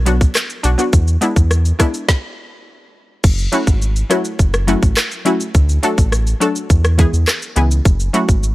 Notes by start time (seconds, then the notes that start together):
Already playing: B1
0.06 F#3 B3 D4 F#4, closed hi-hat, shaker
0.21 kick, shaker
0.35 cross-stick, clap, shaker
0.50 shaker
0.63 B1 D4 F#4, closed hi-hat, shaker
0.78 F#3 B3 D4 F#4, shaker
0.93 E2, kick, shaker
1.08 shaker
1.21 G#3 B3 D4 E4, closed hi-hat, shaker
1.36 E2, kick, shaker
1.51 cross-stick, shaker
1.65 shaker
1.79 G#3 B3 D4 E4, kick, cross-stick, closed hi-hat, shaker
1.94 shaker
2.09 kick, snare
3.24 F#1, kick, crash, shaker
3.38 shaker
3.52 F#3 A3 C#4 E4 F#4, closed hi-hat, shaker
3.67 G#1, kick, shaker
3.82 shaker
3.96 shaker
4.10 F#3 A3 C#4 E4 F#4, cross-stick, closed hi-hat, shaker
4.25 shaker
4.39 F#1, kick, shaker
4.54 cross-stick, shaker
4.67 F#3 A3 C#4 E4 F#4, closed hi-hat, shaker
4.83 A1, kick, shaker
4.97 cross-stick, clap, shaker
5.11 shaker
5.25 F#3 A3 C#4 E4 F#4, closed hi-hat, shaker
5.40 shaker
5.55 D2, kick, shaker
5.69 shaker
5.83 F#3 A3 D4 F#4 A4, closed hi-hat, shaker
5.98 A1, kick, shaker
6.12 cross-stick, shaker
6.27 shaker
6.40 F#3 A3 D4 F#4 A4, closed hi-hat, shaker
6.56 shaker
6.70 E2, kick, shaker
6.85 cross-stick, shaker
6.98 E3 G#3 B3 E4 G#4, kick, closed hi-hat, shaker
7.13 E2, shaker
7.28 cross-stick, clap, shaker
7.42 shaker
7.56 C#2 E3 G#3 B3 E4 G#4, closed hi-hat, shaker
7.71 shaker
7.85 F#1, kick, shaker
8.00 shaker
8.13 F#3 A3 C#4 E4 F#4, closed hi-hat, shaker
8.29 G#1, kick, shaker
8.43 shaker